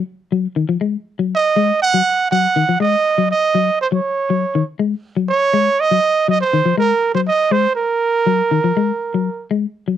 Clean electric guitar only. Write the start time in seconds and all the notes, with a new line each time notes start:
0.32 F#3
0.56 D#3
0.69 F3
0.81 G#3
1.19 F#3
1.56 G#3
1.94 F#3
2.32 F#3
2.56 D#3
2.69 F3
2.80 G#3
3.18 F#3
3.55 F#3
3.92 F#3
4.30 F#3
4.55 D#3
4.79 G#3
5.17 F#3
5.54 G#3
5.91 F#3
6.28 F#3
6.53 D#3
6.66 F3
6.78 G#3
7.15 F#3
7.51 G#3
8.27 F#3
8.51 D#3
8.64 F3
8.77 G#3
9.14 F#3
9.51 G#3
9.88 F#3